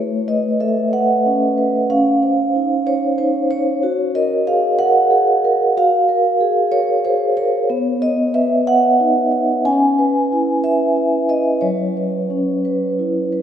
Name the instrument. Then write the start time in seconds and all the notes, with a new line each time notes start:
vibraphone
Already playing: A3 C#5
0.28 B4 D#5
0.60 A4 E5
0.93 B4 F#5
1.26 C#4
1.58 B4
1.90 C#4 F5
2.23 C5
2.55 D#4
2.86 C5 C#5
3.18 D#4 C5
3.51 C5 C#5
3.83 F#4
4.15 A#4 D#5
4.47 G#4 F5
4.79 A#4 F#5
5.11 G#4
5.45 A#4
5.77 F#4 F5
6.09 A#4
6.40 G#4
6.72 A#4 C#5
7.05 G#4 C5
7.37 A#4 C#5
7.70 B3
8.02 C#5 D#5
8.34 B4 E5
8.67 C#5 F#5
9.00 D#4
9.32 C#5
9.65 C#4 G#5
9.99 B4
10.32 E4
10.64 B4 E5
10.96 E4
11.29 B4 D#5
11.61 F#3 C#5
11.97 B4
12.30 C#4
12.65 B4
12.99 E4
13.32 B4